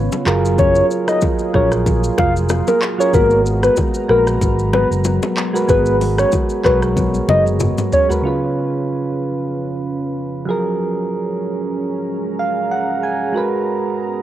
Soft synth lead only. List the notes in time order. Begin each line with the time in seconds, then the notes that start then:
0.59 C#5
1.08 D#5
1.55 C#5
2.19 F5
2.68 A#4
3.00 C#5
3.14 A#4
3.64 B4
4.10 A#4
4.74 B4
5.70 B4
6.19 C#5
6.65 B4
7.29 D#5
7.93 C#5